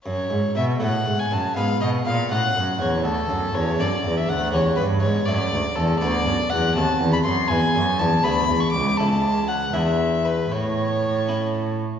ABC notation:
X:1
M:6/8
L:1/16
Q:3/8=80
K:F#m
V:1 name="Violin"
c4 e2 f3 g a2 | ^e2 ^d2 e2 f4 c2 | A4 c2 d3 e f2 | c2 B2 c2 d4 A2 |
[K:A] d4 f2 a3 b ^b2 | g4 a2 b3 c' d'2 | a4 f2 e4 B2 | c8- c2 z2 |]
V:2 name="Harpsichord"
z6 [A,Ac]6 | [B,GB]6 [CFA]6 | z6 [DFA]6 | [C=G]6 [A,FA]6 |
[K:A] [B,FA]6 [^B,FA]6 | [B,EB]6 [B,EG]6 | [CEA]6 [DEG]6 | z6 [CEA]6 |]
V:3 name="Harpsichord" clef=bass
F,,2 G,,2 B,,2 A,,2 G,,2 F,,2 | G,,2 B,,2 ^A,,2 =A,,2 F,,2 E,,2 | D,,2 F,,2 E,,2 F,,2 E,,2 D,,2 | E,,2 =G,,2 ^G,,2 F,,2 D,,2 E,,2 |
[K:A] D,,2 F,,2 E,,2 ^D,,2 E,,2 F,,2 | E,,2 F,,2 E,,2 D,,2 E,,2 C,,2 | C,,6 E,,6 | A,,8- A,,2 z2 |]
V:4 name="Cello" clef=bass
F,,2 G,,2 B,,2 A,,2 G,,2 F,,2 | G,,2 B,,2 ^A,,2 =A,,2 F,,2 E,,2 | D,,2 F,,2 E,,2 F,,2 E,,2 D,,2 | E,,2 =G,,2 ^G,,2 F,,2 D,,2 E,,2 |
[K:A] D,,2 F,,2 E,,2 ^D,,2 E,,2 F,,2 | E,,2 F,,2 E,,2 D,,2 E,,2 C,,2 | C,,6 E,,6 | A,,8- A,,2 z2 |]